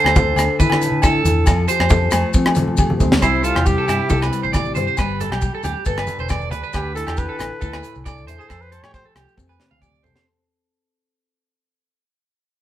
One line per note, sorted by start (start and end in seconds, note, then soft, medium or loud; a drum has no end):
0.00 1.46 D3 medium
0.00 0.17 A4 medium
0.00 0.55 C5 loud
0.04 0.32 D2 medium
0.04 cross-stick medium
0.04 low agogo medium
0.16 1.45 A4 medium
0.16 kick loud
0.16 high conga loud
0.16 maracas loud
0.36 0.46 D2 loud
0.36 1.44 D4 medium
0.36 cross-stick medium
0.36 closed hi-hat medium
0.36 low agogo medium
0.36 maracas medium
0.59 0.88 D3 loud
0.59 1.03 E4 medium
0.59 1.00 B4 medium
0.59 kick medium
0.59 muted conga soft
0.59 high conga medium
0.59 maracas loud
0.70 cross-stick medium
0.70 low agogo medium
0.81 1.47 A2 medium
0.81 closed hi-hat medium
0.81 maracas medium
0.92 1.19 D3 medium
1.02 1.24 E4 medium
1.02 1.65 A4 medium
1.02 kick medium
1.02 cross-stick medium
1.02 low agogo medium
1.02 maracas loud
1.24 1.43 E2 loud
1.24 1.44 E4 medium
1.24 closed hi-hat medium
1.24 muted conga soft
1.24 high conga medium
1.24 maracas medium
1.46 1.65 F2 medium
1.46 3.19 F3 medium
1.46 kick loud
1.46 cross-stick medium
1.46 low agogo medium
1.46 maracas loud
1.68 2.78 G4 medium
1.68 2.30 C5 medium
1.68 closed hi-hat medium
1.68 muted conga soft
1.68 maracas medium
1.80 2.07 F2 medium
1.80 cross-stick medium
1.80 low agogo medium
1.90 3.22 A4 medium
1.90 kick loud
1.90 high conga medium
1.90 maracas loud
2.11 2.22 F2 loud
2.11 3.19 A3 medium
2.11 cross-stick medium
2.11 closed hi-hat medium
2.11 low agogo medium
2.11 maracas medium
2.33 2.63 F3 loud
2.33 2.99 C4 medium
2.33 kick medium
2.33 muted conga soft
2.33 maracas loud
2.46 cross-stick medium
2.46 low agogo medium
2.55 3.19 C3 medium
2.55 closed hi-hat soft
2.55 high conga medium
2.55 maracas medium
2.68 2.95 F3 loud
2.68 high conga medium
2.77 3.20 G4 medium
2.77 kick medium
2.77 high conga medium
2.77 low agogo medium
2.77 maracas loud
2.90 high conga medium
3.00 3.19 D2 loud
3.00 3.45 C4 medium
3.00 kick medium
3.00 low conga medium
3.00 maracas medium
3.12 snare medium
3.12 low conga medium
3.22 3.51 C2 medium
3.22 4.95 C3 medium
3.22 3.66 G3 medium
3.22 3.46 E4 medium
3.22 3.43 C5 medium
3.22 kick medium
3.22 cross-stick medium
3.22 muted conga soft
3.22 low agogo medium
3.22 maracas medium
3.44 3.87 E4 medium
3.44 3.67 F4 medium
3.44 3.55 A4 medium
3.44 closed hi-hat medium
3.44 maracas medium
3.55 3.74 E2 medium
3.55 3.76 G4 medium
3.55 cross-stick medium
3.55 low agogo medium
3.55 maracas soft
3.66 4.30 G3 medium
3.66 4.32 G4 medium
3.66 kick medium
3.66 maracas medium
3.78 3.88 A4 medium
3.88 3.98 G2 medium
3.88 4.09 E4 medium
3.88 4.08 E4 soft
3.88 cross-stick medium
3.88 closed hi-hat medium
3.88 muted conga soft
3.88 low agogo medium
3.88 maracas medium
4.09 4.29 C2 medium
4.09 4.95 E4 medium
4.09 4.21 A4 medium
4.09 kick medium
4.09 muted conga soft
4.09 high conga medium
4.09 maracas medium
4.22 4.42 B4 medium
4.22 cross-stick medium
4.22 low agogo medium
4.22 maracas soft
4.31 4.95 G3 medium
4.31 closed hi-hat soft
4.31 maracas medium
4.43 4.76 A1 medium
4.43 4.53 C5 medium
4.43 maracas soft
4.53 4.96 G4 medium
4.53 4.74 D5 medium
4.53 kick medium
4.53 cross-stick medium
4.53 high conga medium
4.53 low agogo medium
4.53 maracas loud
4.65 maracas soft
4.75 4.86 G2 medium
4.75 4.86 C5 medium
4.75 4.96 C5 medium
4.75 closed hi-hat soft
4.75 high conga medium
4.75 maracas medium
4.87 4.97 C5 medium
4.87 maracas soft
4.97 5.26 G1 medium
4.97 6.74 G3 medium
4.97 5.19 B4 medium
4.97 kick medium
4.97 cross-stick medium
4.97 low agogo medium
4.97 maracas medium
5.20 5.31 A4 medium
5.20 5.64 D5 medium
5.20 closed hi-hat soft
5.20 muted conga soft
5.20 low conga medium
5.20 maracas medium
5.30 5.49 B1 medium
5.30 5.52 G4 medium
5.30 cross-stick medium
5.30 low agogo medium
5.30 maracas soft
5.41 6.72 G4 medium
5.41 kick medium
5.41 maracas medium
5.55 5.64 A4 medium
5.63 5.73 D2 medium
5.63 5.85 G4 medium
5.63 6.28 D5 medium
5.63 closed hi-hat soft
5.63 muted conga soft
5.63 low conga medium
5.63 low agogo medium
5.63 maracas medium
5.85 6.05 G1 medium
5.85 5.97 A4 medium
5.85 6.71 B4 medium
5.85 kick medium
5.85 muted conga soft
5.85 maracas medium
5.98 6.18 B4 medium
5.98 cross-stick medium
5.98 low agogo medium
6.07 6.71 D3 medium
6.07 closed hi-hat soft
6.07 high conga medium
6.07 maracas medium
6.19 6.51 E1 medium
6.19 6.30 C5 medium
6.19 maracas soft
6.29 6.51 D5 medium
6.29 kick medium
6.29 cross-stick medium
6.29 high conga medium
6.29 low agogo medium
6.29 maracas medium
6.41 maracas soft
6.51 6.61 D2 medium
6.51 6.62 B4 medium
6.51 6.72 D5 medium
6.51 closed hi-hat soft
6.51 maracas medium
6.63 6.72 B4 medium
6.63 maracas soft
6.73 7.03 D2 medium
6.73 8.49 D3 medium
6.73 6.94 G4 medium
6.73 6.95 B4 medium
6.73 kick medium
6.73 cross-stick medium
6.73 low agogo medium
6.73 maracas medium
6.95 7.61 E4 soft
6.95 7.06 A4 medium
6.95 7.20 A4 medium
6.95 closed hi-hat soft
6.95 maracas medium
7.07 7.26 E2 medium
7.07 7.28 G4 medium
7.07 cross-stick medium
7.07 low agogo medium
7.07 maracas soft
7.17 8.47 D4 medium
7.17 7.84 B4 medium
7.17 kick medium
7.17 maracas medium
7.29 7.39 A4 medium
7.39 7.49 A1 medium
7.39 8.07 A4 soft
7.39 muted clean electric guitar stroke medium
7.39 cross-stick medium
7.39 closed hi-hat soft
7.39 low agogo medium
7.39 maracas medium
7.61 7.81 D2 medium
7.61 8.47 E4 medium
7.61 7.72 A4 medium
7.61 kick medium
7.61 maracas medium
7.73 7.94 B4 medium
7.73 cross-stick medium
7.73 low agogo medium
7.83 8.49 A2 medium
7.83 closed hi-hat soft
7.83 maracas medium
7.95 8.27 C2 medium
7.95 maracas soft
8.05 8.73 A4 medium
8.05 8.26 D5 medium
8.05 kick medium
8.05 cross-stick medium
8.05 low agogo medium
8.05 maracas medium
8.18 maracas soft
8.27 8.37 E2 medium
8.27 8.38 C5 medium
8.27 8.48 E5 medium
8.27 closed hi-hat soft
8.27 maracas medium
8.38 8.50 G#4 medium
8.38 8.48 C5 medium
8.38 maracas soft
8.49 8.78 F2 medium
8.49 10.23 F3 medium
8.49 8.63 A4 medium
8.49 8.70 C5 medium
8.49 kick medium
8.49 cross-stick medium
8.49 low agogo medium
8.49 maracas medium
8.61 8.73 B4 medium
8.61 maracas soft
8.72 8.83 A4 medium
8.72 10.03 A4 medium
8.72 8.84 C5 medium
8.72 closed hi-hat soft
8.72 maracas medium
8.83 9.01 A2 medium
8.83 9.04 G4 medium
8.83 8.93 C#5 medium
8.83 cross-stick medium
8.83 low agogo medium
8.83 maracas soft
8.94 10.23 A3 medium
8.94 9.07 C5 medium
8.94 kick medium
8.94 maracas medium
9.05 9.15 A4 medium
9.15 9.25 C2 medium
9.15 9.37 G4 medium
9.15 9.82 G4 soft
9.15 cross-stick medium
9.15 closed hi-hat soft
9.15 low agogo medium
9.15 maracas medium
9.28 maracas soft
9.37 9.56 F2 medium
9.37 12.01 C4 medium
9.37 muted clean electric guitar stroke medium
9.37 kick medium
9.37 high tom soft
9.37 maracas medium
9.49 9.70 B4 medium
9.49 low agogo medium
9.49 maracas soft
9.60 10.23 C3 medium
9.60 snare soft
9.60 maracas medium
9.71 10.05 D2 medium
9.71 9.81 F5 medium
9.71 mid tom soft
9.82 10.24 G4 soft
9.82 10.02 D5 medium
9.82 kick medium
9.82 mid tom soft
9.82 low agogo medium
9.82 maracas medium
9.95 maracas soft
10.03 10.13 C2 medium
10.03 12.02 A4 medium
10.03 10.14 C5 medium
10.03 floor tom medium
10.03 maracas medium
10.15 10.25 C5 medium
10.15 snare medium